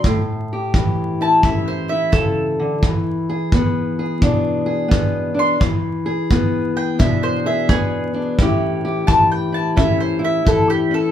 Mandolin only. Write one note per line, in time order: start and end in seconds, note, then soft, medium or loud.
0.00 1.18 C6 loud
1.22 1.44 A5 medium
1.44 1.67 E5 medium
1.68 1.90 C5 medium
1.89 2.13 E5 medium
2.12 2.81 A4 loud
5.39 6.74 C6 loud
6.77 6.99 G5 loud
6.99 7.23 E5 loud
7.23 7.46 C5 loud
7.46 7.69 E5 medium
7.69 8.37 G#4 loud
9.07 9.31 A5 loud
9.31 9.54 G5 loud
9.54 9.76 A5 medium
9.77 10.00 E5 loud
10.00 10.23 C5 medium
10.25 10.47 E5 loud
10.48 10.70 A4 loud
10.70 10.93 G4 loud
10.94 11.12 A4 loud